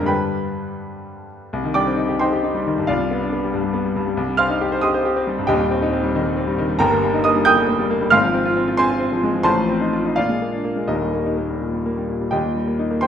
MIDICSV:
0, 0, Header, 1, 2, 480
1, 0, Start_track
1, 0, Key_signature, -3, "minor"
1, 0, Tempo, 485830
1, 78, Time_signature, 6, 3, 24, 8
1, 1517, Tempo, 449438
1, 2477, Tempo, 438917
1, 7261, Key_signature, -3, "major"
1, 10157, Tempo, 477707
1, 13787, End_track
2, 0, Start_track
2, 0, Title_t, "Grand piano"
2, 0, Program_c, 0, 0
2, 0, Control_c, 0, 64, 127
2, 0, Note_on_c, 0, 41, 79
2, 0, Note_on_c, 0, 50, 57
2, 0, Note_on_c, 0, 56, 57
2, 0, Note_on_c, 0, 62, 54
2, 0, Note_on_c, 0, 68, 61
2, 0, Note_on_c, 0, 70, 64
2, 0, Note_on_c, 0, 77, 69
2, 0, Note_on_c, 0, 80, 84
2, 0, Note_on_c, 0, 82, 83
2, 28, Note_on_c, 0, 43, 62
2, 42, Note_off_c, 0, 50, 0
2, 42, Note_on_c, 0, 50, 50
2, 56, Note_on_c, 0, 55, 52
2, 62, Note_on_c, 0, 83, 75
2, 63, Note_off_c, 0, 62, 0
2, 63, Note_on_c, 0, 62, 47
2, 75, Note_on_c, 0, 71, 55
2, 78, Note_on_c, 0, 79, 57
2, 100, Control_c, 0, 64, 0
2, 102, Note_off_c, 0, 68, 0
2, 103, Note_off_c, 0, 70, 0
2, 104, Note_off_c, 0, 77, 0
2, 105, Note_off_c, 0, 56, 0
2, 105, Note_off_c, 0, 82, 0
2, 108, Note_off_c, 0, 41, 0
2, 108, Note_off_c, 0, 80, 0
2, 305, Control_c, 0, 64, 127
2, 1244, Note_off_c, 0, 71, 0
2, 1245, Note_off_c, 0, 79, 0
2, 1277, Note_off_c, 0, 83, 0
2, 1452, Note_off_c, 0, 43, 0
2, 1459, Note_off_c, 0, 50, 0
2, 1466, Note_off_c, 0, 55, 0
2, 1470, Note_off_c, 0, 62, 0
2, 1512, Note_on_c, 0, 36, 73
2, 1536, Control_c, 0, 64, 0
2, 1627, Note_on_c, 0, 51, 57
2, 1703, Control_c, 0, 64, 127
2, 1738, Note_on_c, 0, 86, 87
2, 1745, Note_on_c, 0, 74, 69
2, 1745, Note_on_c, 0, 79, 68
2, 1752, Note_on_c, 0, 55, 59
2, 1823, Note_off_c, 0, 51, 0
2, 1875, Note_on_c, 0, 60, 61
2, 1945, Note_off_c, 0, 55, 0
2, 1978, Note_on_c, 0, 63, 66
2, 2067, Note_off_c, 0, 60, 0
2, 2104, Note_on_c, 0, 67, 59
2, 2179, Note_off_c, 0, 63, 0
2, 2196, Note_off_c, 0, 74, 0
2, 2196, Note_off_c, 0, 79, 0
2, 2221, Note_on_c, 0, 84, 82
2, 2227, Note_off_c, 0, 86, 0
2, 2231, Note_on_c, 0, 72, 66
2, 2233, Note_on_c, 0, 79, 62
2, 2239, Note_on_c, 0, 63, 69
2, 2303, Note_off_c, 0, 67, 0
2, 2360, Note_on_c, 0, 67, 61
2, 2430, Note_off_c, 0, 63, 0
2, 2478, Note_on_c, 0, 63, 65
2, 2552, Note_off_c, 0, 67, 0
2, 2600, Note_on_c, 0, 55, 62
2, 2673, Note_off_c, 0, 63, 0
2, 2730, Note_on_c, 0, 51, 62
2, 2794, Note_off_c, 0, 55, 0
2, 2853, Note_on_c, 0, 43, 59
2, 2916, Note_off_c, 0, 36, 0
2, 2916, Note_off_c, 0, 72, 0
2, 2917, Note_off_c, 0, 79, 0
2, 2919, Note_off_c, 0, 51, 0
2, 2955, Note_off_c, 0, 84, 0
2, 2956, Note_on_c, 0, 77, 73
2, 2967, Note_on_c, 0, 65, 60
2, 2967, Note_on_c, 0, 74, 62
2, 2968, Note_off_c, 0, 43, 0
2, 2968, Note_on_c, 0, 36, 72
2, 2983, Control_c, 0, 64, 0
2, 3085, Note_on_c, 0, 55, 58
2, 3159, Control_c, 0, 64, 127
2, 3215, Note_on_c, 0, 59, 61
2, 3274, Note_off_c, 0, 55, 0
2, 3342, Note_on_c, 0, 62, 63
2, 3399, Note_off_c, 0, 59, 0
2, 3450, Note_on_c, 0, 59, 59
2, 3522, Note_off_c, 0, 62, 0
2, 3577, Note_on_c, 0, 55, 61
2, 3636, Note_off_c, 0, 59, 0
2, 3682, Note_on_c, 0, 43, 64
2, 3759, Note_off_c, 0, 55, 0
2, 3796, Note_on_c, 0, 55, 58
2, 3871, Note_off_c, 0, 43, 0
2, 3900, Note_on_c, 0, 59, 62
2, 3988, Note_off_c, 0, 55, 0
2, 4026, Note_on_c, 0, 55, 60
2, 4099, Note_off_c, 0, 59, 0
2, 4114, Note_off_c, 0, 65, 0
2, 4114, Note_off_c, 0, 74, 0
2, 4145, Note_on_c, 0, 43, 66
2, 4152, Note_off_c, 0, 77, 0
2, 4221, Note_off_c, 0, 55, 0
2, 4265, Note_on_c, 0, 55, 61
2, 4340, Note_off_c, 0, 43, 0
2, 4354, Note_off_c, 0, 36, 0
2, 4376, Note_on_c, 0, 36, 77
2, 4389, Note_off_c, 0, 55, 0
2, 4411, Control_c, 0, 64, 0
2, 4502, Note_on_c, 0, 55, 57
2, 4595, Control_c, 0, 64, 127
2, 4598, Note_on_c, 0, 89, 93
2, 4609, Note_on_c, 0, 84, 74
2, 4611, Note_on_c, 0, 77, 70
2, 4612, Note_on_c, 0, 60, 64
2, 4699, Note_off_c, 0, 55, 0
2, 4736, Note_on_c, 0, 63, 66
2, 4813, Note_off_c, 0, 60, 0
2, 4858, Note_on_c, 0, 67, 67
2, 4935, Note_off_c, 0, 63, 0
2, 4979, Note_on_c, 0, 72, 72
2, 5056, Note_off_c, 0, 67, 0
2, 5064, Note_off_c, 0, 84, 0
2, 5065, Note_off_c, 0, 77, 0
2, 5081, Note_on_c, 0, 87, 88
2, 5093, Note_off_c, 0, 89, 0
2, 5096, Note_on_c, 0, 84, 65
2, 5098, Note_on_c, 0, 75, 66
2, 5099, Note_on_c, 0, 67, 68
2, 5177, Note_off_c, 0, 72, 0
2, 5220, Note_on_c, 0, 72, 68
2, 5297, Note_off_c, 0, 67, 0
2, 5340, Note_on_c, 0, 67, 72
2, 5418, Note_off_c, 0, 72, 0
2, 5462, Note_on_c, 0, 60, 69
2, 5537, Note_off_c, 0, 67, 0
2, 5579, Note_on_c, 0, 55, 66
2, 5658, Note_off_c, 0, 60, 0
2, 5703, Note_on_c, 0, 43, 66
2, 5775, Note_off_c, 0, 55, 0
2, 5776, Note_off_c, 0, 36, 0
2, 5778, Note_off_c, 0, 84, 0
2, 5779, Note_off_c, 0, 75, 0
2, 5797, Note_on_c, 0, 79, 86
2, 5803, Note_on_c, 0, 27, 78
2, 5808, Note_on_c, 0, 75, 68
2, 5811, Note_on_c, 0, 39, 79
2, 5812, Note_on_c, 0, 67, 63
2, 5814, Note_off_c, 0, 87, 0
2, 5825, Note_off_c, 0, 43, 0
2, 5851, Control_c, 0, 64, 0
2, 5944, Note_on_c, 0, 55, 64
2, 5996, Control_c, 0, 64, 127
2, 6057, Note_on_c, 0, 60, 66
2, 6137, Note_off_c, 0, 55, 0
2, 6182, Note_on_c, 0, 63, 71
2, 6254, Note_off_c, 0, 60, 0
2, 6296, Note_on_c, 0, 60, 62
2, 6377, Note_off_c, 0, 63, 0
2, 6414, Note_on_c, 0, 55, 67
2, 6494, Note_off_c, 0, 60, 0
2, 6541, Note_on_c, 0, 51, 77
2, 6613, Note_off_c, 0, 55, 0
2, 6653, Note_on_c, 0, 55, 60
2, 6735, Note_off_c, 0, 51, 0
2, 6778, Note_on_c, 0, 60, 67
2, 6851, Note_off_c, 0, 55, 0
2, 6896, Note_on_c, 0, 55, 67
2, 6970, Note_off_c, 0, 75, 0
2, 6972, Note_off_c, 0, 60, 0
2, 6972, Note_off_c, 0, 67, 0
2, 7008, Note_off_c, 0, 79, 0
2, 7013, Note_on_c, 0, 51, 72
2, 7090, Note_off_c, 0, 55, 0
2, 7132, Note_on_c, 0, 55, 68
2, 7205, Note_off_c, 0, 27, 0
2, 7208, Note_off_c, 0, 51, 0
2, 7210, Note_off_c, 0, 39, 0
2, 7237, Note_on_c, 0, 82, 105
2, 7247, Note_on_c, 0, 31, 86
2, 7248, Note_on_c, 0, 70, 78
2, 7249, Note_on_c, 0, 79, 79
2, 7250, Note_on_c, 0, 43, 85
2, 7257, Note_off_c, 0, 55, 0
2, 7279, Control_c, 0, 64, 0
2, 7375, Note_on_c, 0, 58, 66
2, 7458, Control_c, 0, 64, 127
2, 7496, Note_on_c, 0, 55, 67
2, 7572, Note_off_c, 0, 58, 0
2, 7619, Note_on_c, 0, 63, 72
2, 7693, Note_off_c, 0, 55, 0
2, 7703, Note_off_c, 0, 70, 0
2, 7704, Note_off_c, 0, 79, 0
2, 7732, Note_off_c, 0, 82, 0
2, 7732, Note_on_c, 0, 87, 101
2, 7739, Note_on_c, 0, 75, 72
2, 7742, Note_on_c, 0, 58, 71
2, 7815, Note_off_c, 0, 63, 0
2, 7860, Note_on_c, 0, 55, 69
2, 7937, Note_off_c, 0, 58, 0
2, 7957, Note_off_c, 0, 87, 0
2, 7962, Note_on_c, 0, 91, 127
2, 7967, Note_off_c, 0, 75, 0
2, 7971, Note_on_c, 0, 79, 90
2, 7974, Note_on_c, 0, 87, 94
2, 7977, Note_on_c, 0, 58, 74
2, 8057, Note_off_c, 0, 55, 0
2, 8094, Note_on_c, 0, 55, 63
2, 8176, Note_off_c, 0, 58, 0
2, 8223, Note_on_c, 0, 58, 74
2, 8294, Note_off_c, 0, 55, 0
2, 8337, Note_on_c, 0, 55, 73
2, 8418, Note_off_c, 0, 58, 0
2, 8460, Note_on_c, 0, 58, 74
2, 8535, Note_off_c, 0, 55, 0
2, 8577, Note_on_c, 0, 55, 68
2, 8657, Note_off_c, 0, 58, 0
2, 8659, Note_off_c, 0, 31, 0
2, 8659, Note_off_c, 0, 79, 0
2, 8660, Note_off_c, 0, 87, 0
2, 8661, Note_off_c, 0, 43, 0
2, 8678, Note_on_c, 0, 89, 115
2, 8679, Note_on_c, 0, 32, 79
2, 8694, Note_on_c, 0, 77, 84
2, 8695, Note_on_c, 0, 84, 81
2, 8697, Note_on_c, 0, 44, 82
2, 8698, Note_off_c, 0, 91, 0
2, 8704, Note_off_c, 0, 55, 0
2, 8732, Control_c, 0, 64, 0
2, 8822, Note_on_c, 0, 53, 66
2, 8894, Control_c, 0, 64, 127
2, 8937, Note_on_c, 0, 60, 64
2, 9022, Note_off_c, 0, 53, 0
2, 9059, Note_on_c, 0, 65, 76
2, 9140, Note_off_c, 0, 60, 0
2, 9181, Note_on_c, 0, 60, 67
2, 9261, Note_off_c, 0, 65, 0
2, 9304, Note_on_c, 0, 65, 69
2, 9382, Note_off_c, 0, 60, 0
2, 9385, Note_off_c, 0, 77, 0
2, 9386, Note_off_c, 0, 84, 0
2, 9410, Note_on_c, 0, 84, 104
2, 9421, Note_off_c, 0, 89, 0
2, 9421, Note_on_c, 0, 72, 80
2, 9424, Note_on_c, 0, 60, 78
2, 9426, Note_on_c, 0, 80, 87
2, 9502, Note_off_c, 0, 65, 0
2, 9541, Note_on_c, 0, 65, 63
2, 9622, Note_off_c, 0, 60, 0
2, 9655, Note_on_c, 0, 60, 71
2, 9740, Note_off_c, 0, 65, 0
2, 9794, Note_on_c, 0, 53, 68
2, 9857, Note_off_c, 0, 60, 0
2, 9915, Note_on_c, 0, 56, 72
2, 9987, Note_off_c, 0, 53, 0
2, 10028, Note_on_c, 0, 53, 65
2, 10100, Note_off_c, 0, 32, 0
2, 10107, Note_off_c, 0, 72, 0
2, 10109, Note_off_c, 0, 44, 0
2, 10109, Note_off_c, 0, 56, 0
2, 10110, Note_off_c, 0, 80, 0
2, 10115, Note_off_c, 0, 84, 0
2, 10132, Note_on_c, 0, 84, 100
2, 10137, Note_on_c, 0, 33, 77
2, 10139, Note_on_c, 0, 72, 78
2, 10139, Note_on_c, 0, 81, 75
2, 10148, Note_on_c, 0, 45, 81
2, 10155, Note_off_c, 0, 53, 0
2, 10177, Control_c, 0, 64, 0
2, 10275, Note_on_c, 0, 53, 57
2, 10320, Control_c, 0, 64, 127
2, 10391, Note_on_c, 0, 60, 64
2, 10460, Note_off_c, 0, 53, 0
2, 10514, Note_on_c, 0, 63, 59
2, 10578, Note_off_c, 0, 60, 0
2, 10634, Note_on_c, 0, 65, 64
2, 10700, Note_off_c, 0, 63, 0
2, 10756, Note_on_c, 0, 63, 58
2, 10814, Note_off_c, 0, 72, 0
2, 10814, Note_off_c, 0, 81, 0
2, 10820, Note_off_c, 0, 65, 0
2, 10832, Note_off_c, 0, 33, 0
2, 10837, Note_off_c, 0, 45, 0
2, 10850, Note_off_c, 0, 84, 0
2, 10861, Note_on_c, 0, 77, 86
2, 10869, Note_off_c, 0, 63, 0
2, 10873, Note_on_c, 0, 74, 64
2, 10876, Note_on_c, 0, 46, 76
2, 10876, Note_on_c, 0, 65, 67
2, 10885, Control_c, 0, 64, 0
2, 10999, Note_on_c, 0, 56, 48
2, 11083, Control_c, 0, 64, 127
2, 11121, Note_on_c, 0, 58, 52
2, 11182, Note_off_c, 0, 56, 0
2, 11230, Note_on_c, 0, 62, 55
2, 11304, Note_off_c, 0, 58, 0
2, 11350, Note_on_c, 0, 58, 55
2, 11420, Note_off_c, 0, 62, 0
2, 11470, Note_on_c, 0, 56, 48
2, 11543, Note_off_c, 0, 58, 0
2, 11554, Note_off_c, 0, 74, 0
2, 11555, Note_off_c, 0, 65, 0
2, 11574, Note_off_c, 0, 46, 0
2, 11583, Note_on_c, 0, 75, 67
2, 11584, Note_on_c, 0, 27, 61
2, 11588, Note_off_c, 0, 77, 0
2, 11591, Note_off_c, 0, 56, 0
2, 11592, Note_on_c, 0, 70, 50
2, 11593, Note_on_c, 0, 63, 50
2, 11594, Note_on_c, 0, 39, 60
2, 11608, Control_c, 0, 64, 0
2, 11723, Note_on_c, 0, 55, 47
2, 11798, Control_c, 0, 64, 127
2, 11843, Note_on_c, 0, 58, 47
2, 11915, Note_off_c, 0, 55, 0
2, 11950, Note_off_c, 0, 63, 0
2, 11966, Note_on_c, 0, 63, 50
2, 12036, Note_off_c, 0, 58, 0
2, 12080, Note_on_c, 0, 58, 44
2, 12157, Note_off_c, 0, 63, 0
2, 12205, Note_on_c, 0, 55, 44
2, 12275, Note_off_c, 0, 58, 0
2, 12326, Note_on_c, 0, 46, 46
2, 12398, Note_off_c, 0, 55, 0
2, 12445, Note_on_c, 0, 55, 45
2, 12519, Note_off_c, 0, 46, 0
2, 12571, Note_on_c, 0, 58, 47
2, 12638, Note_off_c, 0, 55, 0
2, 12689, Note_on_c, 0, 55, 43
2, 12761, Note_off_c, 0, 58, 0
2, 12768, Note_off_c, 0, 70, 0
2, 12804, Note_off_c, 0, 75, 0
2, 12804, Note_on_c, 0, 46, 46
2, 12880, Note_off_c, 0, 55, 0
2, 12925, Note_on_c, 0, 55, 41
2, 12995, Note_off_c, 0, 46, 0
2, 13000, Note_off_c, 0, 27, 0
2, 13005, Note_off_c, 0, 39, 0
2, 13022, Note_on_c, 0, 79, 70
2, 13033, Note_on_c, 0, 75, 53
2, 13034, Note_on_c, 0, 67, 48
2, 13036, Note_on_c, 0, 39, 64
2, 13042, Note_off_c, 0, 55, 0
2, 13063, Control_c, 0, 64, 0
2, 13155, Note_on_c, 0, 46, 44
2, 13262, Control_c, 0, 64, 127
2, 13272, Note_on_c, 0, 55, 48
2, 13349, Note_off_c, 0, 46, 0
2, 13390, Note_on_c, 0, 58, 46
2, 13469, Note_off_c, 0, 55, 0
2, 13509, Note_on_c, 0, 63, 49
2, 13589, Note_off_c, 0, 58, 0
2, 13623, Note_on_c, 0, 58, 50
2, 13706, Note_off_c, 0, 63, 0
2, 13714, Note_off_c, 0, 75, 0
2, 13715, Note_off_c, 0, 67, 0
2, 13727, Note_off_c, 0, 79, 0
2, 13727, Note_on_c, 0, 84, 88
2, 13738, Note_on_c, 0, 72, 64
2, 13739, Note_on_c, 0, 55, 54
2, 13742, Note_on_c, 0, 79, 65
2, 13787, Note_off_c, 0, 39, 0
2, 13787, Note_off_c, 0, 55, 0
2, 13787, Note_off_c, 0, 58, 0
2, 13787, Note_off_c, 0, 72, 0
2, 13787, Note_off_c, 0, 79, 0
2, 13787, Note_off_c, 0, 84, 0
2, 13787, End_track
0, 0, End_of_file